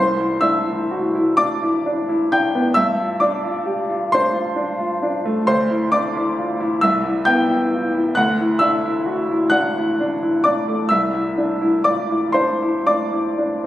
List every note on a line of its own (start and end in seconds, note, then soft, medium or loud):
0.00 2.72 C2 medium
0.00 0.38 C5 medium
0.00 0.41 C6 medium
0.20 0.56 E4 soft
0.41 0.79 D4 soft
0.41 1.32 E5 medium
0.41 1.36 E6 medium
0.67 1.04 E4 soft
0.91 1.13 F#4 soft
1.15 1.52 E4 soft
1.37 1.74 D4 soft
1.37 2.26 D5 medium
1.37 2.29 D6 loud
1.63 1.98 E4 medium
1.86 2.21 D4 soft
2.09 2.44 E4 soft
2.32 2.67 D4 soft
2.32 2.74 G5 medium
2.32 2.76 G6 medium
2.55 2.76 B3 soft
2.74 5.43 G2 medium
2.74 3.18 E5 medium
2.74 3.20 E6 loud
2.99 3.35 F4 soft
3.20 3.57 D4 soft
3.20 4.08 D5 medium
3.20 4.11 D6 medium
3.43 3.80 F4 soft
3.65 3.88 G4 soft
3.90 4.25 F4 soft
4.12 4.49 D4 medium
4.12 5.44 C5 medium
4.12 5.46 C6 medium
4.33 4.70 F4 medium
4.56 4.92 D4 soft
4.79 5.15 F4 medium
5.03 5.38 D4 soft
5.25 5.47 A3 medium
5.47 6.79 D2 medium
5.47 5.89 C5 medium
5.47 5.92 C6 medium
5.70 6.06 E4 soft
5.92 6.29 D4 soft
5.92 6.79 D5 medium
5.92 6.83 D6 medium
6.16 6.52 E4 medium
6.37 6.60 F4 soft
6.60 6.83 E4 medium
6.81 8.14 C2 medium
6.81 7.24 E5 medium
6.81 7.26 E6 medium
7.03 7.40 E4 soft
7.25 7.63 B3 soft
7.25 8.13 G5 medium
7.25 8.17 G6 loud
7.49 7.86 E4 soft
7.72 7.95 F4 soft
7.94 8.17 E4 soft
8.15 10.85 D2 medium
8.15 8.59 F#5 medium
8.15 8.61 F#6 loud
8.40 8.76 E4 soft
8.59 8.97 D4 soft
8.59 9.47 E5 medium
8.59 9.50 E6 medium
8.85 9.21 E4 soft
9.06 9.29 F#4 soft
9.31 9.66 E4 soft
9.50 9.88 D4 soft
9.50 10.39 F#5 medium
9.50 10.42 F#6 loud
9.78 10.13 E4 soft
10.01 10.35 D4 soft
10.23 10.58 E4 soft
10.44 10.81 D4 soft
10.44 10.87 D5 medium
10.44 10.90 D6 medium
10.68 10.90 A3 soft
10.89 13.66 C2 medium
10.89 11.82 E5 medium
10.89 11.85 E6 medium
11.13 11.51 E4 soft
11.38 11.76 D4 soft
11.62 12.01 E4 soft
11.84 12.11 F4 soft
11.84 12.32 D5 medium
11.84 12.35 D6 medium
12.11 12.51 E4 soft
12.32 12.76 D4 soft
12.32 12.82 C5 medium
12.32 12.85 C6 medium
12.62 13.03 E4 soft
12.87 13.28 D4 soft
12.87 13.66 D5 medium
12.87 13.66 D6 medium
13.13 13.55 E4 soft
13.38 13.66 D4 soft